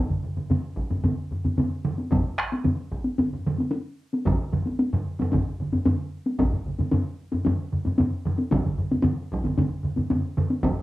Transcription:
0.10 taiko low-mid medium
0.10 taiko mid medium
0.23 taiko low-mid medium
0.23 taiko mid medium
0.37 taiko low-mid medium
0.37 taiko mid medium
0.50 taiko low-mid medium
0.50 taiko mid medium
0.50 taiko high medium
0.76 taiko medium
0.91 taiko low-mid medium
0.91 taiko mid medium
0.91 taiko high soft
1.04 taiko low-mid medium
1.04 taiko mid medium
1.04 taiko high medium
1.31 taiko low-mid medium
1.31 taiko mid medium
1.44 taiko low-mid medium
1.44 taiko mid medium
1.44 taiko high soft
1.58 taiko low-mid medium
1.58 taiko mid medium
1.58 taiko high medium
1.85 taiko low-mid medium
1.85 taiko mid loud
1.98 taiko high soft
2.11 taiko medium
2.11 taiko low-mid medium
2.11 taiko mid medium
2.11 taiko high medium
2.38 taiko rim medium
2.52 taiko high soft
2.65 taiko low-mid medium
2.65 taiko mid medium
2.65 taiko high medium
2.92 taiko medium
3.04 taiko high soft
3.18 taiko low-mid medium
3.18 taiko mid medium
3.18 taiko high medium
3.33 taiko low-mid medium
3.33 taiko mid medium
3.46 taiko low-mid medium
3.46 taiko mid medium
3.58 taiko high medium
3.71 taiko high medium
4.13 taiko high medium
4.25 taiko loud
4.25 taiko low-mid medium
4.25 taiko mid medium
4.25 taiko high medium
4.52 taiko low-mid medium
4.52 taiko mid medium
4.66 taiko high medium
4.79 taiko high medium
4.93 taiko low-mid loud
4.93 taiko mid medium
5.19 taiko low-mid medium
5.19 taiko mid medium
5.19 taiko high medium
5.32 taiko medium
5.32 taiko low-mid medium
5.32 taiko mid medium
5.32 taiko high medium
5.60 taiko low-mid medium
5.60 taiko mid medium
5.73 taiko low-mid medium
5.73 taiko mid medium
5.73 taiko high medium
5.85 taiko low-mid loud
5.85 taiko mid medium
5.85 taiko high medium
6.26 taiko high medium
6.38 taiko medium
6.38 taiko low-mid medium
6.38 taiko mid medium
6.38 taiko high medium
6.52 taiko low-mid medium
6.52 taiko mid medium
6.66 taiko low-mid medium
6.66 taiko mid medium
6.79 taiko low-mid medium
6.79 taiko mid medium
6.79 taiko high medium
6.92 taiko low-mid medium
6.92 taiko mid loud
6.92 taiko high medium
7.32 taiko low-mid medium
7.32 taiko mid medium
7.32 taiko high medium
7.45 taiko low-mid medium
7.45 taiko mid loud
7.45 taiko high medium
7.73 taiko low-mid medium
7.73 taiko mid medium
7.85 taiko low-mid medium
7.85 taiko mid medium
7.85 taiko high medium
7.98 taiko low-mid medium
7.98 taiko mid medium
7.98 taiko high medium
8.25 taiko low-mid medium
8.25 taiko mid loud
8.38 taiko high medium
8.51 taiko loud
8.51 taiko low-mid medium
8.51 taiko mid medium
8.51 taiko high medium
8.65 taiko low-mid medium
8.65 taiko mid medium
8.78 taiko low-mid medium
8.78 taiko mid medium
8.91 taiko low-mid medium
8.91 taiko mid medium
8.91 taiko high medium
9.03 taiko low-mid medium
9.03 taiko mid loud
9.03 taiko high medium
9.32 taiko medium
9.44 taiko low-mid medium
9.44 taiko mid medium
9.44 taiko high medium
9.58 taiko low-mid medium
9.58 taiko mid medium
9.58 taiko high medium
9.84 taiko low-mid medium
9.84 taiko mid medium
9.96 taiko low-mid medium
9.96 taiko mid medium
9.96 taiko high medium
10.10 taiko low-mid medium
10.10 taiko mid medium
10.10 taiko high medium
10.37 taiko low-mid medium
10.37 taiko mid loud
10.50 taiko high medium
10.63 taiko loud
10.63 taiko low-mid medium
10.63 taiko mid medium
10.63 taiko high medium

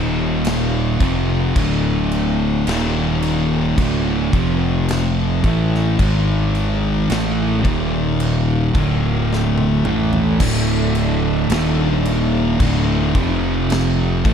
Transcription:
0.00 0.97 D#1 loud
0.00 0.99 D#2 medium
0.00 1.00 A#2 loud
0.00 1.00 D#3 loud
0.45 snare loud
0.45 crash medium
1.00 1.52 F1 loud
1.00 1.55 F2 loud
1.00 1.55 C3 loud
1.00 1.55 F3 loud
1.00 kick loud
1.00 crash medium
1.56 2.63 D1 loud
1.56 2.67 D2 loud
1.56 2.68 A2 loud
1.56 2.68 D3 loud
1.56 kick loud
1.56 crash medium
2.11 crash medium
2.67 3.74 D#1 loud
2.67 3.76 D#2 loud
2.67 3.77 A#2 loud
2.67 3.77 D#3 loud
2.67 snare loud
2.67 crash medium
3.22 crash medium
3.77 4.29 D1 loud
3.77 4.31 D2 medium
3.77 4.32 A2 loud
3.77 4.32 D3 loud
3.77 kick loud
3.77 crash medium
4.33 5.40 F1 loud
4.33 5.42 F2 loud
4.33 5.43 C3 loud
4.33 5.43 F3 loud
4.33 kick loud
4.33 crash medium
4.88 snare loud
4.88 crash medium
5.43 5.95 A1 loud
5.43 5.97 A2 loud
5.43 5.98 E3 loud
5.43 5.98 A3 loud
5.43 kick loud
5.43 crash medium
5.74 snare soft
5.99 7.06 G#1 medium
5.99 7.08 G#2 medium
5.99 7.09 D#3 medium
5.99 7.09 G#3 loud
5.99 kick loud
5.99 crash medium
6.55 crash medium
7.10 7.61 A1 medium
7.10 7.66 A2 loud
7.10 7.66 E3 loud
7.10 7.67 A3 loud
7.10 snare loud
7.10 crash medium
7.65 8.71 D#1 loud
7.65 8.74 D#2 medium
7.65 8.74 A#2 medium
7.65 8.75 D#3 loud
7.65 kick loud
7.65 crash medium
8.20 crash medium
8.74 9.81 D1 loud
8.74 9.84 D2 loud
8.74 9.84 A2 loud
8.74 9.84 D3 loud
8.74 10.38 D4 medium
8.74 10.39 A4 medium
8.74 10.39 E5 medium
8.74 kick loud
8.74 crash medium
9.33 snare medium
9.58 high tom medium
9.85 10.37 A1 medium
9.85 10.39 A2 loud
9.85 10.40 E3 loud
9.85 10.40 A3 loud
9.85 mid tom loud
10.13 floor tom loud
10.40 11.46 D1 medium
10.40 11.49 D2 medium
10.40 11.49 A2 loud
10.40 11.50 D3 loud
10.40 kick loud
10.40 crash loud
10.95 crash medium
11.49 12.56 D#1 loud
11.49 12.59 D#2 loud
11.49 12.59 A#2 loud
11.49 12.59 D#3 loud
11.49 snare loud
11.49 crash medium
12.05 crash medium
12.60 13.11 D1 loud
12.60 13.14 D2 loud
12.60 13.14 A2 loud
12.60 13.14 D3 loud
12.60 kick loud
12.60 crash medium
13.14 14.21 F1 loud
13.14 14.23 F2 medium
13.14 14.24 C3 loud
13.14 14.24 F3 loud
13.14 kick loud
13.14 crash medium
13.70 snare loud
13.70 crash medium
14.25 14.34 A1 loud
14.25 14.34 A2 loud
14.25 14.34 E3 loud
14.25 14.34 A3 loud
14.25 kick loud
14.25 crash medium

